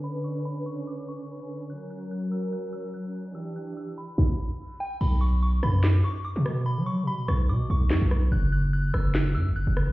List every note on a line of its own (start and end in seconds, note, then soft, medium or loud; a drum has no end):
0.00 1.67 D3 medium
0.00 3.31 C#4 medium
0.00 1.67 B4 medium
0.00 0.20 B5 medium
0.04 closed hi-hat medium
0.24 0.41 C#6 medium
0.36 closed hi-hat medium
0.45 0.62 B5 medium
0.66 0.82 C#6 medium
0.87 1.03 D6 medium
0.87 closed hi-hat medium
1.08 1.67 C#6 medium
1.08 closed hi-hat medium
1.40 closed hi-hat medium
1.49 closed hi-hat soft
1.56 closed hi-hat medium
1.63 closed hi-hat medium
1.70 3.34 F#3 medium
1.70 3.34 A#4 medium
1.70 1.86 F#6 medium
1.70 closed hi-hat medium
1.90 2.07 F#6 medium
2.02 closed hi-hat medium
2.11 2.27 F#6 medium
2.32 2.48 E6 medium
2.52 2.69 F#6 medium
2.52 closed hi-hat medium
2.73 2.89 E6 medium
2.84 closed hi-hat medium
2.94 3.33 F#6 medium
3.15 closed hi-hat medium
3.26 closed hi-hat medium
3.35 4.17 E3 medium
3.35 4.17 D4 medium
3.35 4.17 G4 medium
3.35 3.51 E6 medium
3.35 closed hi-hat medium
3.56 3.72 F#6 medium
3.67 closed hi-hat medium
3.77 3.93 E6 medium
3.98 4.76 B5 medium
4.18 kick loud
4.18 snare medium
4.80 4.96 G5 medium
5.01 5.60 B1 loud
5.01 5.17 B5 medium
5.01 crash medium
5.21 5.37 C#6 medium
5.43 5.59 C#6 medium
5.63 6.03 F#2 loud
5.63 5.79 B5 medium
5.63 cross-stick loud
5.83 6.00 D6 medium
5.83 snare loud
5.83 clap loud
6.04 6.20 C#6 medium
6.25 6.64 D6 medium
6.36 6.79 B2 loud
6.46 cross-stick loud
6.66 6.82 B5 medium
6.77 7.04 F#3 loud
6.86 7.03 C#6 medium
7.03 7.27 B2 loud
7.07 7.24 B5 loud
7.28 7.51 B1 loud
7.28 7.44 C#6 medium
7.28 cross-stick loud
7.49 7.69 B2 loud
7.49 7.65 D6 medium
7.70 7.92 B1 loud
7.70 8.29 C#6 medium
7.90 8.01 F#2 loud
7.90 snare loud
7.90 clap medium
8.01 8.31 B1 loud
8.11 cross-stick loud
8.32 8.91 F#1 loud
8.32 8.48 F#6 medium
8.52 8.69 F#6 medium
8.73 8.89 F#6 medium
8.94 9.37 F#1 loud
8.94 9.10 E6 medium
8.94 cross-stick medium
9.15 9.31 F#6 medium
9.15 snare loud
9.15 clap medium
9.35 9.53 F#2 loud
9.35 9.51 E6 medium
9.51 9.66 F#1 loud
9.56 9.92 F#6 medium
9.67 9.89 F#1 loud
9.77 cross-stick loud
9.88 9.92 C#2 loud